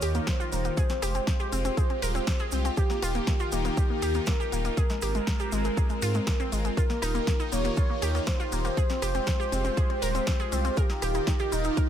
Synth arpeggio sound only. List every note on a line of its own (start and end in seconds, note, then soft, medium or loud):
0.02 0.10 G4 medium
0.15 0.23 A#3 medium
0.27 0.35 A#3 medium
0.40 0.48 F4 loud
0.52 0.60 A#3 medium
0.65 0.73 A#3 medium
0.77 0.85 G#4 loud
0.90 0.98 C4 medium
1.02 1.10 G4 medium
1.15 1.23 C4 medium
1.27 1.35 C4 medium
1.40 1.48 G4 loud
1.52 1.60 C4 medium
1.65 1.73 C4 medium
1.77 1.85 G#4 medium
1.90 1.98 C4 medium
2.02 2.10 A#4 loud
2.15 2.23 C4 medium
2.27 2.35 C4 medium
2.40 2.48 G#4 loud
2.52 2.60 C4 medium
2.65 2.73 C4 medium
2.77 2.85 G4 loud
2.90 2.98 A#3 medium
3.02 3.10 F4 medium
3.15 3.23 A#3 medium
3.27 3.35 A#3 medium
3.40 3.48 F4 loud
3.52 3.60 A#3 medium
3.65 3.73 A#3 medium
3.77 3.85 G4 medium
3.90 3.98 A#3 medium
4.02 4.10 G4 loud
4.15 4.23 A#3 medium
4.27 4.35 A#3 medium
4.40 4.48 G4 loud
4.52 4.60 A#3 medium
4.65 4.73 A#3 medium
4.77 4.85 G#4 loud
4.90 4.98 G#3 medium
5.02 5.10 G4 medium
5.15 5.23 G#3 medium
5.27 5.35 G#3 medium
5.40 5.48 G4 loud
5.52 5.60 G#3 medium
5.65 5.73 G#3 medium
5.77 5.85 G#4 medium
5.90 5.98 G#3 medium
6.02 6.10 F4 loud
6.15 6.23 G#3 medium
6.27 6.35 G#3 medium
6.40 6.48 C4 loud
6.52 6.60 G#3 medium
6.65 6.73 G#3 medium
6.77 6.85 F4 loud
6.90 6.98 A#3 medium
7.02 7.10 D#4 medium
7.15 7.23 A#3 medium
7.27 7.35 A#3 medium
7.40 7.48 D#4 loud
7.52 7.60 A#3 medium
7.65 7.73 A#3 medium
7.77 7.85 F4 medium
7.90 7.98 A#3 medium
8.02 8.10 G4 medium
8.15 8.23 A#3 medium
8.27 8.35 A#3 medium
8.40 8.48 F4 loud
8.52 8.60 A#3 medium
8.65 8.73 A#3 medium
8.77 8.85 G#4 loud
8.90 8.98 C4 medium
9.02 9.10 G4 medium
9.15 9.23 C4 medium
9.27 9.35 C4 medium
9.40 9.48 G4 loud
9.52 9.60 C4 medium
9.65 9.72 C4 medium
9.77 9.85 G#4 medium
9.90 9.98 C4 medium
10.02 10.10 A#4 loud
10.15 10.23 C4 medium
10.27 10.35 C4 medium
10.40 10.48 G#4 loud
10.52 10.60 C4 medium
10.65 10.73 C4 medium
10.77 10.85 A#4 loud
10.90 10.98 D#4 medium
11.02 11.10 G4 medium
11.15 11.23 D#4 medium
11.27 11.35 D#4 medium
11.40 11.48 G4 loud
11.52 11.60 D#4 medium
11.65 11.73 D#4 medium
11.77 11.85 A#4 medium